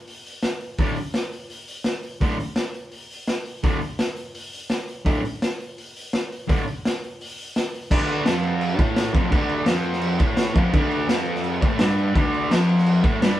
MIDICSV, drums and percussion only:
0, 0, Header, 1, 2, 480
1, 0, Start_track
1, 0, Tempo, 355030
1, 1068, Time_signature, 4, 2, 24, 8
1, 18114, End_track
2, 0, Start_track
2, 0, Title_t, "Drums"
2, 100, Note_on_c, 9, 46, 73
2, 235, Note_off_c, 9, 46, 0
2, 352, Note_on_c, 9, 46, 59
2, 487, Note_off_c, 9, 46, 0
2, 576, Note_on_c, 9, 38, 104
2, 577, Note_on_c, 9, 46, 70
2, 711, Note_off_c, 9, 38, 0
2, 712, Note_off_c, 9, 46, 0
2, 817, Note_on_c, 9, 46, 57
2, 952, Note_off_c, 9, 46, 0
2, 1056, Note_on_c, 9, 46, 75
2, 1062, Note_on_c, 9, 36, 110
2, 1191, Note_off_c, 9, 46, 0
2, 1198, Note_off_c, 9, 36, 0
2, 1302, Note_on_c, 9, 46, 58
2, 1437, Note_off_c, 9, 46, 0
2, 1540, Note_on_c, 9, 38, 97
2, 1542, Note_on_c, 9, 46, 73
2, 1676, Note_off_c, 9, 38, 0
2, 1677, Note_off_c, 9, 46, 0
2, 1788, Note_on_c, 9, 46, 62
2, 1923, Note_off_c, 9, 46, 0
2, 2025, Note_on_c, 9, 46, 79
2, 2161, Note_off_c, 9, 46, 0
2, 2267, Note_on_c, 9, 46, 64
2, 2403, Note_off_c, 9, 46, 0
2, 2493, Note_on_c, 9, 38, 93
2, 2494, Note_on_c, 9, 46, 67
2, 2628, Note_off_c, 9, 38, 0
2, 2629, Note_off_c, 9, 46, 0
2, 2744, Note_on_c, 9, 46, 55
2, 2879, Note_off_c, 9, 46, 0
2, 2991, Note_on_c, 9, 36, 101
2, 2996, Note_on_c, 9, 46, 68
2, 3126, Note_off_c, 9, 36, 0
2, 3132, Note_off_c, 9, 46, 0
2, 3242, Note_on_c, 9, 46, 60
2, 3377, Note_off_c, 9, 46, 0
2, 3459, Note_on_c, 9, 38, 104
2, 3460, Note_on_c, 9, 46, 71
2, 3594, Note_off_c, 9, 38, 0
2, 3596, Note_off_c, 9, 46, 0
2, 3707, Note_on_c, 9, 46, 56
2, 3842, Note_off_c, 9, 46, 0
2, 3943, Note_on_c, 9, 46, 72
2, 4078, Note_off_c, 9, 46, 0
2, 4200, Note_on_c, 9, 46, 55
2, 4335, Note_off_c, 9, 46, 0
2, 4428, Note_on_c, 9, 38, 90
2, 4430, Note_on_c, 9, 46, 65
2, 4563, Note_off_c, 9, 38, 0
2, 4565, Note_off_c, 9, 46, 0
2, 4668, Note_on_c, 9, 46, 60
2, 4804, Note_off_c, 9, 46, 0
2, 4917, Note_on_c, 9, 46, 76
2, 4918, Note_on_c, 9, 36, 113
2, 5052, Note_off_c, 9, 46, 0
2, 5053, Note_off_c, 9, 36, 0
2, 5158, Note_on_c, 9, 46, 58
2, 5293, Note_off_c, 9, 46, 0
2, 5394, Note_on_c, 9, 38, 108
2, 5395, Note_on_c, 9, 46, 74
2, 5529, Note_off_c, 9, 38, 0
2, 5531, Note_off_c, 9, 46, 0
2, 5631, Note_on_c, 9, 46, 66
2, 5766, Note_off_c, 9, 46, 0
2, 5877, Note_on_c, 9, 46, 88
2, 6013, Note_off_c, 9, 46, 0
2, 6121, Note_on_c, 9, 46, 65
2, 6256, Note_off_c, 9, 46, 0
2, 6351, Note_on_c, 9, 38, 96
2, 6352, Note_on_c, 9, 46, 78
2, 6486, Note_off_c, 9, 38, 0
2, 6487, Note_off_c, 9, 46, 0
2, 6594, Note_on_c, 9, 46, 60
2, 6729, Note_off_c, 9, 46, 0
2, 6840, Note_on_c, 9, 36, 108
2, 6844, Note_on_c, 9, 46, 75
2, 6976, Note_off_c, 9, 36, 0
2, 6979, Note_off_c, 9, 46, 0
2, 7094, Note_on_c, 9, 46, 62
2, 7229, Note_off_c, 9, 46, 0
2, 7331, Note_on_c, 9, 38, 101
2, 7332, Note_on_c, 9, 46, 74
2, 7466, Note_off_c, 9, 38, 0
2, 7467, Note_off_c, 9, 46, 0
2, 7574, Note_on_c, 9, 46, 57
2, 7710, Note_off_c, 9, 46, 0
2, 7815, Note_on_c, 9, 46, 76
2, 7950, Note_off_c, 9, 46, 0
2, 8058, Note_on_c, 9, 46, 63
2, 8194, Note_off_c, 9, 46, 0
2, 8291, Note_on_c, 9, 38, 105
2, 8292, Note_on_c, 9, 46, 64
2, 8426, Note_off_c, 9, 38, 0
2, 8428, Note_off_c, 9, 46, 0
2, 8548, Note_on_c, 9, 46, 59
2, 8683, Note_off_c, 9, 46, 0
2, 8780, Note_on_c, 9, 36, 117
2, 8782, Note_on_c, 9, 46, 79
2, 8915, Note_off_c, 9, 36, 0
2, 8917, Note_off_c, 9, 46, 0
2, 9024, Note_on_c, 9, 46, 54
2, 9159, Note_off_c, 9, 46, 0
2, 9267, Note_on_c, 9, 38, 107
2, 9268, Note_on_c, 9, 46, 71
2, 9402, Note_off_c, 9, 38, 0
2, 9403, Note_off_c, 9, 46, 0
2, 9514, Note_on_c, 9, 46, 55
2, 9649, Note_off_c, 9, 46, 0
2, 9749, Note_on_c, 9, 46, 84
2, 9884, Note_off_c, 9, 46, 0
2, 9981, Note_on_c, 9, 46, 61
2, 10116, Note_off_c, 9, 46, 0
2, 10224, Note_on_c, 9, 38, 99
2, 10225, Note_on_c, 9, 46, 80
2, 10359, Note_off_c, 9, 38, 0
2, 10360, Note_off_c, 9, 46, 0
2, 10466, Note_on_c, 9, 46, 54
2, 10602, Note_off_c, 9, 46, 0
2, 10696, Note_on_c, 9, 36, 104
2, 10697, Note_on_c, 9, 49, 124
2, 10697, Note_on_c, 9, 57, 79
2, 10831, Note_off_c, 9, 36, 0
2, 10832, Note_off_c, 9, 49, 0
2, 10832, Note_off_c, 9, 57, 0
2, 10938, Note_on_c, 9, 57, 64
2, 11073, Note_off_c, 9, 57, 0
2, 11165, Note_on_c, 9, 38, 104
2, 11167, Note_on_c, 9, 57, 87
2, 11301, Note_off_c, 9, 38, 0
2, 11302, Note_off_c, 9, 57, 0
2, 11400, Note_on_c, 9, 57, 61
2, 11535, Note_off_c, 9, 57, 0
2, 11640, Note_on_c, 9, 57, 89
2, 11775, Note_off_c, 9, 57, 0
2, 11884, Note_on_c, 9, 36, 114
2, 11890, Note_on_c, 9, 57, 70
2, 12019, Note_off_c, 9, 36, 0
2, 12025, Note_off_c, 9, 57, 0
2, 12120, Note_on_c, 9, 38, 105
2, 12121, Note_on_c, 9, 57, 77
2, 12255, Note_off_c, 9, 38, 0
2, 12256, Note_off_c, 9, 57, 0
2, 12365, Note_on_c, 9, 36, 108
2, 12369, Note_on_c, 9, 57, 62
2, 12501, Note_off_c, 9, 36, 0
2, 12504, Note_off_c, 9, 57, 0
2, 12603, Note_on_c, 9, 36, 102
2, 12604, Note_on_c, 9, 57, 88
2, 12738, Note_off_c, 9, 36, 0
2, 12740, Note_off_c, 9, 57, 0
2, 12833, Note_on_c, 9, 57, 61
2, 12968, Note_off_c, 9, 57, 0
2, 13064, Note_on_c, 9, 38, 106
2, 13065, Note_on_c, 9, 57, 90
2, 13199, Note_off_c, 9, 38, 0
2, 13201, Note_off_c, 9, 57, 0
2, 13298, Note_on_c, 9, 57, 63
2, 13421, Note_on_c, 9, 38, 37
2, 13433, Note_off_c, 9, 57, 0
2, 13540, Note_on_c, 9, 57, 92
2, 13556, Note_off_c, 9, 38, 0
2, 13675, Note_off_c, 9, 57, 0
2, 13776, Note_on_c, 9, 57, 69
2, 13790, Note_on_c, 9, 36, 114
2, 13911, Note_off_c, 9, 57, 0
2, 13926, Note_off_c, 9, 36, 0
2, 14019, Note_on_c, 9, 38, 108
2, 14020, Note_on_c, 9, 57, 78
2, 14154, Note_off_c, 9, 38, 0
2, 14156, Note_off_c, 9, 57, 0
2, 14264, Note_on_c, 9, 57, 62
2, 14272, Note_on_c, 9, 36, 113
2, 14399, Note_off_c, 9, 57, 0
2, 14408, Note_off_c, 9, 36, 0
2, 14512, Note_on_c, 9, 57, 91
2, 14516, Note_on_c, 9, 36, 107
2, 14647, Note_off_c, 9, 57, 0
2, 14651, Note_off_c, 9, 36, 0
2, 14753, Note_on_c, 9, 57, 64
2, 14888, Note_off_c, 9, 57, 0
2, 14996, Note_on_c, 9, 38, 107
2, 14998, Note_on_c, 9, 57, 90
2, 15131, Note_off_c, 9, 38, 0
2, 15133, Note_off_c, 9, 57, 0
2, 15217, Note_on_c, 9, 57, 65
2, 15344, Note_on_c, 9, 38, 39
2, 15352, Note_off_c, 9, 57, 0
2, 15464, Note_on_c, 9, 57, 81
2, 15479, Note_off_c, 9, 38, 0
2, 15600, Note_off_c, 9, 57, 0
2, 15713, Note_on_c, 9, 57, 69
2, 15715, Note_on_c, 9, 36, 105
2, 15848, Note_off_c, 9, 57, 0
2, 15850, Note_off_c, 9, 36, 0
2, 15940, Note_on_c, 9, 38, 106
2, 15942, Note_on_c, 9, 57, 81
2, 16075, Note_off_c, 9, 38, 0
2, 16077, Note_off_c, 9, 57, 0
2, 16201, Note_on_c, 9, 57, 59
2, 16336, Note_off_c, 9, 57, 0
2, 16434, Note_on_c, 9, 36, 107
2, 16440, Note_on_c, 9, 57, 74
2, 16569, Note_off_c, 9, 36, 0
2, 16575, Note_off_c, 9, 57, 0
2, 16685, Note_on_c, 9, 57, 59
2, 16820, Note_off_c, 9, 57, 0
2, 16918, Note_on_c, 9, 38, 121
2, 16919, Note_on_c, 9, 57, 84
2, 17053, Note_off_c, 9, 38, 0
2, 17055, Note_off_c, 9, 57, 0
2, 17160, Note_on_c, 9, 57, 67
2, 17277, Note_on_c, 9, 38, 36
2, 17295, Note_off_c, 9, 57, 0
2, 17391, Note_on_c, 9, 57, 90
2, 17412, Note_off_c, 9, 38, 0
2, 17526, Note_off_c, 9, 57, 0
2, 17630, Note_on_c, 9, 36, 105
2, 17634, Note_on_c, 9, 57, 63
2, 17765, Note_off_c, 9, 36, 0
2, 17769, Note_off_c, 9, 57, 0
2, 17877, Note_on_c, 9, 38, 101
2, 17878, Note_on_c, 9, 57, 73
2, 18012, Note_off_c, 9, 38, 0
2, 18013, Note_off_c, 9, 57, 0
2, 18114, End_track
0, 0, End_of_file